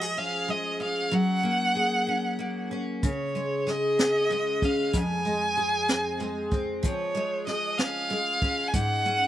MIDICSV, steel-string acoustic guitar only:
0, 0, Header, 1, 2, 480
1, 0, Start_track
1, 0, Key_signature, -5, "major"
1, 0, Tempo, 634921
1, 842, Time_signature, 6, 3, 24, 8
1, 7012, End_track
2, 0, Start_track
2, 0, Title_t, "Steel-string acoustic guitar"
2, 0, Program_c, 0, 25
2, 0, Note_on_c, 0, 53, 60
2, 0, Note_on_c, 0, 56, 45
2, 10, Note_on_c, 0, 68, 39
2, 130, Note_on_c, 0, 61, 45
2, 361, Note_off_c, 0, 56, 0
2, 364, Note_on_c, 0, 56, 43
2, 601, Note_off_c, 0, 61, 0
2, 604, Note_on_c, 0, 61, 42
2, 839, Note_off_c, 0, 53, 0
2, 842, Note_on_c, 0, 54, 60
2, 893, Note_off_c, 0, 68, 0
2, 1080, Note_off_c, 0, 56, 0
2, 1083, Note_on_c, 0, 58, 43
2, 1324, Note_on_c, 0, 68, 45
2, 1561, Note_off_c, 0, 61, 0
2, 1564, Note_on_c, 0, 61, 44
2, 1796, Note_off_c, 0, 58, 0
2, 1805, Note_on_c, 0, 58, 39
2, 2045, Note_off_c, 0, 61, 0
2, 2048, Note_on_c, 0, 61, 41
2, 2287, Note_off_c, 0, 54, 0
2, 2291, Note_on_c, 0, 49, 59
2, 2335, Note_off_c, 0, 58, 0
2, 2336, Note_off_c, 0, 61, 0
2, 2533, Note_on_c, 0, 56, 42
2, 2769, Note_off_c, 0, 68, 0
2, 2772, Note_on_c, 0, 68, 44
2, 3017, Note_on_c, 0, 61, 44
2, 3252, Note_off_c, 0, 56, 0
2, 3255, Note_on_c, 0, 56, 42
2, 3488, Note_off_c, 0, 61, 0
2, 3497, Note_on_c, 0, 61, 45
2, 3730, Note_on_c, 0, 41, 64
2, 3732, Note_off_c, 0, 49, 0
2, 3781, Note_off_c, 0, 61, 0
2, 3967, Note_off_c, 0, 56, 0
2, 3970, Note_on_c, 0, 56, 45
2, 4209, Note_off_c, 0, 68, 0
2, 4212, Note_on_c, 0, 68, 48
2, 4449, Note_on_c, 0, 60, 49
2, 4686, Note_off_c, 0, 56, 0
2, 4689, Note_on_c, 0, 56, 43
2, 4916, Note_off_c, 0, 60, 0
2, 4925, Note_on_c, 0, 60, 45
2, 5161, Note_on_c, 0, 53, 66
2, 5167, Note_off_c, 0, 41, 0
2, 5213, Note_off_c, 0, 60, 0
2, 5400, Note_off_c, 0, 56, 0
2, 5403, Note_on_c, 0, 56, 49
2, 5643, Note_off_c, 0, 68, 0
2, 5646, Note_on_c, 0, 68, 47
2, 5885, Note_on_c, 0, 61, 48
2, 6123, Note_off_c, 0, 56, 0
2, 6126, Note_on_c, 0, 56, 46
2, 6360, Note_off_c, 0, 61, 0
2, 6363, Note_on_c, 0, 61, 42
2, 6602, Note_off_c, 0, 53, 0
2, 6605, Note_on_c, 0, 44, 62
2, 6845, Note_off_c, 0, 56, 0
2, 6848, Note_off_c, 0, 61, 0
2, 6848, Note_on_c, 0, 61, 46
2, 7012, Note_off_c, 0, 44, 0
2, 7012, Note_off_c, 0, 61, 0
2, 7012, Note_off_c, 0, 68, 0
2, 7012, End_track
0, 0, End_of_file